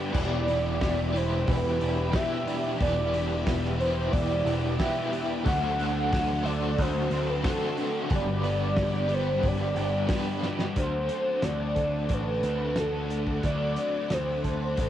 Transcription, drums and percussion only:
0.14 kick, crash
0.48 open hi-hat
0.81 kick, snare, open hi-hat
1.16 open hi-hat
1.48 kick, open hi-hat
1.81 open hi-hat
2.13 kick, snare, open hi-hat
2.48 open hi-hat
2.80 kick, open hi-hat
3.14 open hi-hat
3.47 kick, snare, open hi-hat
3.64 snare
3.80 open hi-hat
4.13 kick, open hi-hat
4.47 open hi-hat
4.80 kick, snare, open hi-hat
5.13 open hi-hat
5.46 kick, open hi-hat
5.80 open hi-hat
6.13 kick, snare, open hi-hat
6.46 open hi-hat
6.79 kick, open hi-hat
7.11 open hi-hat
7.44 kick, snare, open hi-hat
7.77 open hi-hat
8.10 kick, open hi-hat
8.44 open hi-hat
8.76 kick, snare, open hi-hat
8.93 snare
9.09 open hi-hat
9.43 kick, open hi-hat
9.76 open hi-hat
10.09 kick, snare, open hi-hat
10.43 snare
10.59 snare
10.76 kick, closed hi-hat
11.09 closed hi-hat
11.42 snare, closed hi-hat
11.76 kick, closed hi-hat
12.09 kick, closed hi-hat
12.43 closed hi-hat
12.76 snare, closed hi-hat
13.10 closed hi-hat
13.27 kick
13.43 kick, closed hi-hat
13.76 closed hi-hat
14.10 snare, closed hi-hat
14.44 kick, closed hi-hat
14.77 kick, closed hi-hat

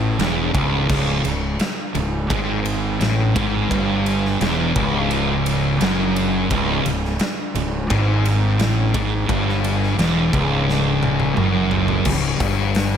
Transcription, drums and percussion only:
0.19 snare, ride
0.55 kick, ride
0.90 kick, crash
1.25 ride
1.59 snare, ride
1.95 ride
2.30 kick, ride
2.65 ride
3.01 snare, ride
3.36 kick, ride
3.71 kick, ride
4.06 ride
4.25 snare
4.41 snare, ride
4.76 kick, ride
5.11 ride
5.46 snare, ride
5.81 snare, ride
6.16 ride
6.50 kick, ride
6.86 ride
7.05 snare
7.19 snare, ride
7.55 ride
7.90 kick, ride
8.25 snare, ride
8.59 snare, ride
8.94 kick, ride
9.29 kick, ride
9.49 snare
9.64 ride
9.83 snare
9.99 snare, ride
10.33 kick, ride
10.69 snare
11.03 high tom
11.20 high tom
11.37 mid tom
11.71 floor tom
11.88 floor tom
12.05 kick, crash
12.40 kick, open hi-hat
12.75 snare, open hi-hat

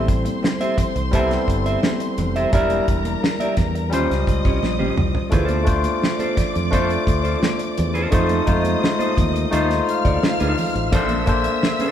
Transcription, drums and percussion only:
0.08 kick, closed hi-hat
0.25 closed hi-hat, high conga
0.43 snare, muted conga
0.59 closed hi-hat, high conga
0.78 kick, closed hi-hat, low conga
0.96 closed hi-hat
1.13 kick, closed hi-hat, high conga
1.31 snare, closed hi-hat
1.48 kick, closed hi-hat
1.66 closed hi-hat
1.83 snare, muted conga, high conga
2.00 closed hi-hat, muted conga
2.18 closed hi-hat, low conga
2.36 closed hi-hat
2.53 kick, closed hi-hat
2.70 closed hi-hat, high conga
2.88 kick, closed hi-hat
3.05 closed hi-hat, high conga
3.24 snare
3.39 closed hi-hat, muted conga, high conga
3.57 kick, snare, closed hi-hat, low conga
3.75 closed hi-hat
3.93 closed hi-hat, high conga
4.11 snare, closed hi-hat
4.27 kick, closed hi-hat
4.45 kick, closed hi-hat
4.63 snare, high conga
4.80 high tom
4.97 mid tom, low conga
5.15 floor tom
5.32 kick, closed hi-hat, muted conga, low conga
5.49 closed hi-hat, high conga
5.67 kick, closed hi-hat
5.84 closed hi-hat, high conga
6.02 snare, muted conga
6.19 closed hi-hat, high conga
6.37 kick, snare, closed hi-hat, low conga
6.56 closed hi-hat
6.73 kick, closed hi-hat, high conga
6.89 closed hi-hat, muted conga
7.07 kick, closed hi-hat
7.25 closed hi-hat
7.43 snare, muted conga, high conga
7.59 closed hi-hat, muted conga
7.78 closed hi-hat, low conga
7.95 closed hi-hat
8.12 kick, closed hi-hat, muted conga, low conga
8.29 closed hi-hat, muted conga, high conga
8.47 kick, closed hi-hat
8.65 closed hi-hat, high conga
8.82 snare, muted conga
8.99 closed hi-hat, high conga
9.17 kick, closed hi-hat, low conga
9.36 closed hi-hat
9.53 closed hi-hat, muted conga, high conga
9.70 snare, closed hi-hat, muted conga
9.89 closed hi-hat
10.05 kick, closed hi-hat
10.23 snare, high conga
10.40 closed hi-hat, muted conga
10.58 open hi-hat, low conga
10.76 closed hi-hat
10.93 kick, closed hi-hat, muted conga, low conga
11.09 closed hi-hat, muted conga, high conga
11.27 kick, closed hi-hat
11.44 closed hi-hat, high conga
11.63 snare
11.79 closed hi-hat, high conga

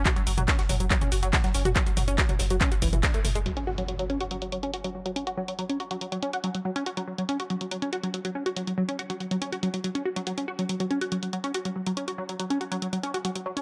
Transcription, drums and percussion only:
0.06 kick, clap, closed hi-hat, mid tom, shaker
0.16 closed hi-hat
0.27 closed hi-hat, open hi-hat, shaker
0.38 closed hi-hat, mid tom, shaker
0.48 kick, snare, clap, closed hi-hat, shaker
0.59 snare, closed hi-hat
0.69 closed hi-hat, mid tom, open hi-hat, shaker
0.80 closed hi-hat, shaker
0.91 kick, clap, closed hi-hat, shaker
1.01 closed hi-hat, mid tom, shaker
1.12 closed hi-hat, open hi-hat, shaker
1.23 closed hi-hat, shaker
1.33 kick, snare, clap, closed hi-hat, mid tom, shaker
1.44 snare, closed hi-hat
1.54 closed hi-hat, open hi-hat, shaker
1.65 closed hi-hat, mid tom, shaker
1.76 kick, clap, closed hi-hat, shaker
1.86 closed hi-hat, shaker
1.97 closed hi-hat, mid tom, open hi-hat, shaker
2.08 closed hi-hat, shaker
2.18 kick, snare, clap, closed hi-hat, shaker
2.29 closed hi-hat, mid tom
2.39 snare, closed hi-hat, open hi-hat, shaker
2.50 closed hi-hat, shaker
2.61 kick, clap, closed hi-hat, mid tom, shaker
2.72 closed hi-hat, shaker
2.82 kick, closed hi-hat, open hi-hat, shaker
2.93 closed hi-hat, mid tom, shaker
3.03 kick, snare, clap, closed hi-hat, shaker
3.14 closed hi-hat, shaker
3.25 closed hi-hat, mid tom, open hi-hat, shaker
3.35 closed hi-hat, shaker
3.46 closed hi-hat
3.57 closed hi-hat
3.78 closed hi-hat
3.88 closed hi-hat
3.99 closed hi-hat
4.10 closed hi-hat
4.20 closed hi-hat
4.31 closed hi-hat
4.42 closed hi-hat
4.52 closed hi-hat
4.63 closed hi-hat
4.74 closed hi-hat
4.84 closed hi-hat
5.06 closed hi-hat
5.16 closed hi-hat
5.27 closed hi-hat
5.48 closed hi-hat
5.59 closed hi-hat
5.70 closed hi-hat
5.80 closed hi-hat
5.91 closed hi-hat
6.01 closed hi-hat
6.12 closed hi-hat
6.22 closed hi-hat
6.33 closed hi-hat
6.44 closed hi-hat
6.55 closed hi-hat
6.76 closed hi-hat
6.86 closed hi-hat
6.97 closed hi-hat
7.18 closed hi-hat
7.29 closed hi-hat
7.40 closed hi-hat
7.50 closed hi-hat
7.61 closed hi-hat
7.71 closed hi-hat
7.82 closed hi-hat
7.93 closed hi-hat
8.03 closed hi-hat
8.14 closed hi-hat
8.25 closed hi-hat
8.46 closed hi-hat
8.56 closed hi-hat
8.67 closed hi-hat
8.89 closed hi-hat
8.99 closed hi-hat
9.10 closed hi-hat
9.20 closed hi-hat
9.31 closed hi-hat
9.42 closed hi-hat
9.52 closed hi-hat
9.63 closed hi-hat
9.74 closed hi-hat
9.84 closed hi-hat
9.95 closed hi-hat
10.16 closed hi-hat
10.27 closed hi-hat
10.38 closed hi-hat
10.59 closed hi-hat
10.69 closed hi-hat
10.80 closed hi-hat
10.91 closed hi-hat
11.01 closed hi-hat
11.12 closed hi-hat
11.23 closed hi-hat
11.33 closed hi-hat
11.44 closed hi-hat
11.54 closed hi-hat
11.65 closed hi-hat
11.86 closed hi-hat
11.97 closed hi-hat
12.08 closed hi-hat
12.29 closed hi-hat
12.40 closed hi-hat
12.50 closed hi-hat
12.61 closed hi-hat
12.72 closed hi-hat
12.82 closed hi-hat
12.93 closed hi-hat
13.03 closed hi-hat
13.14 closed hi-hat
13.25 closed hi-hat
13.35 closed hi-hat
13.57 closed hi-hat

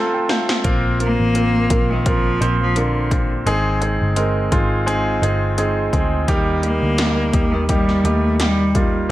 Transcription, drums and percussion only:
0.29 snare
0.49 snare
0.64 kick, closed hi-hat
1.00 closed hi-hat
1.35 closed hi-hat
1.70 kick, closed hi-hat
2.06 kick, closed hi-hat
2.42 closed hi-hat
2.76 closed hi-hat
3.11 kick, closed hi-hat
3.47 closed hi-hat
3.82 closed hi-hat
4.16 closed hi-hat
4.52 kick, closed hi-hat
4.88 closed hi-hat
5.23 closed hi-hat
5.58 closed hi-hat
5.93 kick, closed hi-hat
6.28 kick, closed hi-hat
6.63 closed hi-hat
6.98 snare, closed hi-hat
7.33 kick, closed hi-hat
7.69 kick, closed hi-hat
7.89 snare
8.05 closed hi-hat
8.40 snare, closed hi-hat
8.75 kick, closed hi-hat

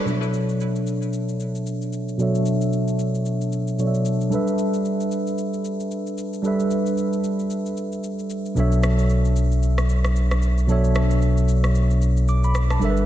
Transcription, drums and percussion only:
0.07 shaker
0.23 shaker
0.34 shaker
0.49 shaker
0.61 shaker
0.76 shaker
0.87 shaker
1.02 shaker
1.13 shaker
1.29 shaker
1.40 shaker
1.55 shaker
1.67 shaker
1.82 shaker
1.93 shaker
2.09 shaker
2.19 shaker
2.35 shaker
2.46 shaker
2.61 shaker
2.73 shaker
2.88 shaker
2.99 shaker
3.15 shaker
3.26 shaker
3.41 shaker
3.52 shaker
3.68 shaker
3.79 shaker
3.94 shaker
4.05 shaker
4.21 shaker
4.32 shaker
4.48 shaker
4.58 shaker
4.74 shaker
4.85 shaker
5.01 shaker
5.12 shaker
5.27 shaker
5.38 shaker
5.54 shaker
5.65 shaker
5.80 shaker
5.91 shaker
6.07 shaker
6.18 shaker
6.33 shaker
6.44 shaker
6.60 shaker
6.71 shaker
6.86 shaker
6.98 shaker
7.13 shaker
7.24 shaker
7.39 shaker
7.50 shaker
7.66 shaker
7.77 shaker
7.92 shaker
8.04 shaker
8.19 shaker
8.30 shaker
8.46 shaker
8.57 shaker
8.72 shaker
8.83 cross-stick, shaker
8.99 shaker
9.10 shaker
9.25 shaker
9.36 shaker
9.52 shaker
9.63 shaker
9.78 cross-stick, shaker
9.89 shaker
10.05 cross-stick, shaker
10.16 shaker
10.31 cross-stick, shaker
10.42 shaker
10.58 shaker
10.69 shaker
10.84 shaker
10.95 cross-stick, shaker
11.11 shaker
11.22 shaker
11.37 shaker
11.48 shaker
11.64 cross-stick, shaker
11.75 shaker
11.91 shaker
12.02 shaker
12.17 shaker
12.28 shaker
12.44 shaker
12.55 cross-stick, shaker
12.70 cross-stick, shaker
12.82 shaker
12.97 shaker

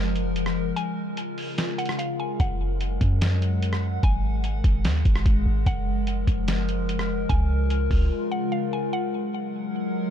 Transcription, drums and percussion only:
0.16 closed hi-hat
0.36 closed hi-hat
0.46 cross-stick
0.77 closed hi-hat
1.17 closed hi-hat
1.38 open hi-hat
1.58 snare, closed hi-hat
1.79 closed hi-hat
1.86 cross-stick, closed hi-hat
1.92 closed hi-hat
1.99 closed hi-hat
2.40 kick, closed hi-hat
2.81 closed hi-hat
3.01 kick, closed hi-hat
3.21 snare, closed hi-hat
3.42 closed hi-hat
3.62 closed hi-hat
3.73 cross-stick
4.03 kick, closed hi-hat
4.44 closed hi-hat
4.64 kick, closed hi-hat
4.85 snare, closed hi-hat
5.05 kick, closed hi-hat
5.16 cross-stick
5.26 kick, closed hi-hat
5.66 kick, closed hi-hat
6.07 closed hi-hat
6.27 kick, closed hi-hat
6.48 snare, closed hi-hat
6.69 closed hi-hat
6.89 closed hi-hat
6.99 cross-stick
7.30 kick, closed hi-hat
7.70 closed hi-hat
7.91 kick, open hi-hat

